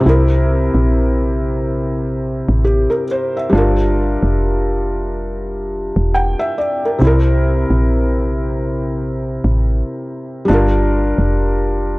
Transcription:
0.00 3.03 C3 medium
0.00 3.04 C4 medium
0.06 0.70 C2 loud
0.06 3.06 E4 medium
0.06 2.64 A#4 medium
0.74 2.44 A#1 medium
2.49 2.88 A1 medium
2.65 2.89 G4 medium
2.90 3.08 A#4 medium
3.11 3.34 C5 medium
3.37 3.77 E5 medium
3.50 4.17 G1 loud
3.50 6.95 G3 medium
3.50 6.96 D4 medium
3.55 6.97 F4 medium
3.55 6.12 A#4 medium
4.23 5.92 F1 loud
5.96 6.35 E1 loud
6.14 6.38 G5 medium
6.39 6.56 E5 medium
6.58 6.81 D5 medium
6.85 7.05 A#4 medium
6.99 7.66 C2 loud
6.99 10.43 C3 medium
6.99 10.44 C4 medium
7.04 10.46 E4 medium
7.04 10.47 A#4 medium
7.70 9.40 A#1 medium
9.44 9.83 A1 medium
10.45 11.99 G3 medium
10.45 11.99 D4 medium
10.50 11.14 G1 loud
10.50 11.99 F4 medium
10.50 11.99 A#4 medium
11.18 11.99 F1 loud

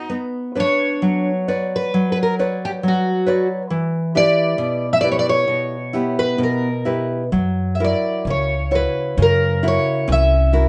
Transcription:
0.10 1.00 B3 medium
0.55 1.30 D4 soft
0.55 1.29 B4 soft
0.55 1.29 C#5 soft
0.60 1.69 C#5 medium
1.02 1.91 F#3 medium
1.48 2.21 B4 soft
1.48 2.21 C#5 soft
1.48 2.21 D5 medium
1.76 2.11 B4 medium
1.94 2.81 F#3 medium
2.12 2.18 B4 medium
2.23 2.34 A#4 medium
2.39 3.10 B4 soft
2.39 3.10 C#5 soft
2.39 3.10 D5 soft
2.65 2.70 G4 medium
2.83 3.68 F#3 medium
2.88 3.47 F#4 medium
3.27 3.61 B4 soft
3.27 3.62 C#5 soft
3.27 3.62 D5 medium
3.70 4.55 E3 medium
4.15 4.85 E4 soft
4.15 4.85 G4 soft
4.15 4.86 B4 medium
4.15 4.93 D5 medium
4.58 5.45 B2 medium
4.93 5.00 E5 medium
5.01 5.75 E4 soft
5.01 5.75 G4 soft
5.01 5.76 B4 medium
5.01 5.08 D5 medium
5.12 5.18 C#5 medium
5.19 5.26 D5 medium
5.29 6.21 C#5 medium
5.48 6.36 B2 medium
5.93 6.68 B3 soft
5.93 6.67 E4 soft
5.93 6.68 G4 soft
6.19 6.41 B4 medium
6.38 7.29 B2 medium
6.43 7.07 A#4 medium
6.85 7.23 E4 soft
6.85 7.23 G4 soft
6.85 7.23 B4 soft
7.32 7.92 F#2 medium
7.32 8.22 F#3 medium
7.75 7.80 E5 soft
7.80 8.53 E4 soft
7.80 8.53 F#4 soft
7.80 8.53 A#4 medium
7.84 8.29 D5 medium
8.25 8.85 C#2 medium
8.25 9.15 C#3 medium
8.30 8.75 C#5 medium
8.71 9.44 E4 soft
8.71 9.44 F#4 soft
8.71 9.44 C#5 medium
8.75 9.16 B4 medium
9.17 9.76 F#2 medium
9.17 10.05 C#3 medium
9.22 9.66 A#4 medium
9.63 10.34 E4 medium
9.63 10.34 F#4 soft
9.63 10.35 A#4 medium
9.68 10.07 C#5 medium
10.08 10.66 C2 medium
10.08 10.69 C#4 medium
10.12 10.69 E5 medium
10.53 10.69 E4 soft
10.53 10.69 F#4 soft
10.53 10.69 A#4 medium

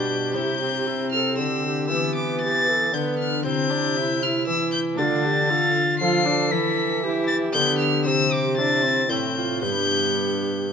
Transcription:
0.00 0.37 G2 medium
0.00 0.34 B2 medium
0.00 0.38 B2 medium
0.00 0.36 B3 medium
0.00 0.36 D4 medium
0.00 0.34 G4 medium
0.00 0.88 G4 medium
0.00 0.33 G6 loud
0.33 1.40 C3 medium
0.33 1.93 C3 medium
0.33 1.34 C4 medium
0.33 1.35 E4 medium
0.33 0.61 E4 medium
0.33 1.36 G4 medium
0.33 1.11 G6 loud
0.62 1.88 C4 medium
0.87 1.13 E4 medium
1.12 1.40 A4 medium
1.12 1.37 F6 loud
1.35 1.91 D3 medium
1.35 1.92 D3 medium
1.35 1.90 C4 medium
1.35 1.88 E4 medium
1.35 1.89 G4 medium
1.35 1.87 E6 loud
1.39 1.65 G4 medium
1.66 2.41 G4 medium
1.87 2.95 E3 medium
1.87 3.45 B3 medium
1.87 2.91 B3 medium
1.87 3.41 E4 medium
1.87 3.43 G4 medium
1.87 2.14 E6 loud
1.92 3.47 E3 medium
2.15 2.41 D6 loud
2.41 2.70 G4 medium
2.41 2.95 A6 loud
2.68 2.95 A4 medium
2.93 3.47 D3 medium
2.93 3.44 D3 medium
2.93 3.44 B3 medium
2.93 3.46 B4 medium
2.93 3.18 G6 loud
3.19 3.44 F6 loud
3.42 4.45 C3 medium
3.42 5.01 C3 medium
3.42 4.99 C4 medium
3.42 3.72 C4 medium
3.42 4.99 E4 medium
3.42 4.76 E4 medium
3.42 5.00 G4 medium
3.42 4.24 G6 loud
3.70 3.98 D4 medium
3.97 4.21 E4 medium
4.22 4.99 E4 medium
4.22 4.47 F6 loud
4.47 4.97 E3 medium
4.47 5.01 E3 medium
4.47 4.71 E6 loud
4.72 4.80 G6 loud
4.95 6.54 D3 medium
4.95 5.71 D3 loud
4.95 6.52 A3 medium
4.95 5.51 D4 medium
4.95 6.53 F4 medium
4.95 5.03 G4 medium
4.95 6.54 D5 medium
4.95 5.98 A6 loud
5.02 5.26 F4 medium
5.25 5.52 G4 medium
5.50 6.00 F4 medium
5.50 5.83 A4 medium
5.99 6.49 F3 medium
5.99 6.54 F3 medium
5.99 6.27 F4 loud
5.99 7.05 A4 medium
5.99 6.52 C7 loud
6.25 6.53 D4 loud
6.51 7.53 E3 medium
6.51 8.09 E3 medium
6.51 8.01 E4 medium
6.51 7.02 E4 medium
6.51 8.08 B4 medium
6.51 7.27 B6 loud
7.03 7.54 E4 medium
7.03 8.60 G4 medium
7.27 7.35 A6 loud
7.52 8.08 D3 medium
7.52 8.09 D3 medium
7.52 8.08 B3 loud
7.52 7.78 G6 loud
7.78 8.04 F6 loud
8.03 9.64 C3 medium
8.03 9.11 C3 medium
8.03 8.59 C4 medium
8.03 9.07 E4 medium
8.03 9.08 C5 medium
8.03 8.33 E6 loud
8.32 8.57 D6 loud
8.57 8.84 D4 medium
8.57 9.10 E4 medium
8.57 9.10 A6 loud
8.83 9.08 C4 medium
9.08 9.64 A2 medium
9.08 9.65 A2 medium
9.08 9.63 C4 medium
9.08 9.64 E4 medium
9.08 9.39 E4 medium
9.08 9.64 C5 medium
9.08 9.61 G6 loud
9.37 9.65 F4 medium
9.60 10.73 G2 medium
9.60 10.73 B3 medium
9.60 10.73 D4 medium
9.60 10.73 G4 medium
9.60 10.73 B4 medium
9.60 10.66 G6 loud

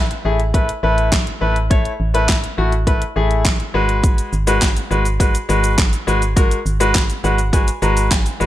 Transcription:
0.00 0.13 A1 loud
0.11 closed hi-hat soft
0.25 0.71 A1 medium
0.25 0.39 A3 medium
0.25 0.39 E4 medium
0.25 0.39 G#4 medium
0.40 closed hi-hat soft
0.54 0.68 A3 medium
0.54 0.68 E4 medium
0.54 0.68 B4 medium
0.54 kick medium
0.54 closed hi-hat medium
0.69 closed hi-hat medium
0.83 1.29 A1 loud
0.83 1.10 A3 medium
0.83 1.10 E4 medium
0.83 1.11 B4 medium
0.98 closed hi-hat medium
1.12 kick loud
1.12 snare medium
1.12 clap loud
1.12 closed hi-hat medium
1.27 closed hi-hat soft
1.41 1.88 A1 medium
1.41 1.55 A3 medium
1.41 1.55 E4 medium
1.41 1.55 B4 medium
1.56 closed hi-hat soft
1.70 1.91 A3 medium
1.70 1.91 E4 medium
1.70 1.91 C#5 medium
1.70 kick loud
1.70 closed hi-hat medium
1.85 closed hi-hat medium
2.00 2.46 A1 loud
2.14 2.35 A3 medium
2.14 2.35 E4 medium
2.14 2.35 B4 loud
2.14 closed hi-hat medium
2.29 kick loud
2.29 snare medium
2.29 clap loud
2.29 closed hi-hat medium
2.44 closed hi-hat medium
2.58 3.04 A1 loud
2.58 2.71 A3 medium
2.58 2.72 E4 medium
2.58 2.72 F#4 medium
2.72 closed hi-hat soft
2.87 3.01 A3 medium
2.87 3.01 E4 medium
2.87 3.01 B4 medium
2.87 kick medium
2.87 closed hi-hat medium
3.02 closed hi-hat medium
3.16 3.62 A1 loud
3.16 3.43 A3 medium
3.16 3.43 E4 medium
3.16 3.44 G#4 medium
3.31 closed hi-hat medium
3.45 kick loud
3.45 snare medium
3.45 clap loud
3.45 closed hi-hat medium
3.60 closed hi-hat soft
3.74 4.21 G#1 medium
3.74 4.33 G#3 medium
3.74 4.33 F#4 medium
3.74 4.33 B4 loud
3.89 closed hi-hat medium
4.04 kick loud
4.04 closed hi-hat medium
4.04 shaker medium
4.18 closed hi-hat medium
4.18 shaker medium
4.33 4.79 G#1 loud
4.33 shaker medium
4.47 4.68 G#3 medium
4.47 4.68 F#4 medium
4.47 4.68 B4 loud
4.47 closed hi-hat medium
4.47 shaker medium
4.62 kick loud
4.62 snare medium
4.62 clap loud
4.62 closed hi-hat medium
4.62 shaker medium
4.76 closed hi-hat soft
4.76 shaker soft
4.91 5.37 G#1 loud
4.91 5.04 G#3 medium
4.91 5.05 F#4 medium
4.91 5.05 B4 medium
4.91 shaker medium
5.05 closed hi-hat soft
5.05 shaker medium
5.20 5.34 G#3 medium
5.20 5.34 F#4 medium
5.20 5.34 B4 medium
5.20 kick medium
5.20 closed hi-hat medium
5.20 shaker medium
5.35 closed hi-hat medium
5.35 shaker medium
5.49 5.96 G#1 loud
5.49 5.76 G#3 medium
5.49 5.76 F#4 medium
5.49 5.77 B4 medium
5.49 shaker medium
5.64 closed hi-hat medium
5.64 shaker medium
5.78 kick loud
5.78 snare medium
5.78 clap loud
5.78 closed hi-hat medium
5.78 shaker medium
5.93 closed hi-hat soft
5.93 shaker soft
6.07 6.54 G#1 medium
6.07 6.21 G#3 medium
6.07 6.21 F#4 medium
6.07 6.21 B4 medium
6.07 shaker medium
6.22 closed hi-hat soft
6.22 shaker medium
6.36 6.57 G#3 medium
6.36 6.57 F#4 medium
6.36 6.57 A#4 loud
6.36 kick loud
6.36 closed hi-hat medium
6.36 shaker medium
6.51 closed hi-hat medium
6.51 shaker medium
6.66 7.12 G#1 medium
6.66 shaker medium
6.80 7.01 G#3 medium
6.80 7.01 F#4 medium
6.80 7.01 B4 medium
6.80 closed hi-hat medium
6.80 shaker medium
6.95 kick loud
6.95 snare medium
6.95 clap loud
6.95 closed hi-hat medium
6.95 shaker medium
7.10 closed hi-hat medium
7.10 shaker soft
7.24 7.70 G#1 loud
7.24 7.38 G#3 medium
7.24 7.38 F#4 medium
7.24 7.38 B4 medium
7.24 7.51 F#5 medium
7.24 shaker soft
7.38 closed hi-hat soft
7.38 shaker medium
7.53 7.67 G#3 medium
7.53 7.67 F#4 medium
7.53 7.67 B4 medium
7.53 7.80 G#5 medium
7.53 kick loud
7.53 closed hi-hat medium
7.53 shaker medium
7.68 closed hi-hat medium
7.68 shaker medium
7.82 8.29 G#1 loud
7.82 8.09 G#3 medium
7.82 8.10 F#4 medium
7.82 8.10 B4 medium
7.82 8.09 A#5 medium
7.82 shaker medium
7.97 closed hi-hat medium
7.97 shaker medium
8.11 kick loud
8.11 snare medium
8.11 clap loud
8.11 closed hi-hat medium
8.11 shaker medium
8.26 closed hi-hat soft
8.26 shaker soft
8.40 8.46 G#1 medium
8.40 8.46 G#3 medium
8.40 8.46 F#4 medium
8.40 8.46 B4 medium
8.40 8.46 B5 medium
8.40 shaker medium

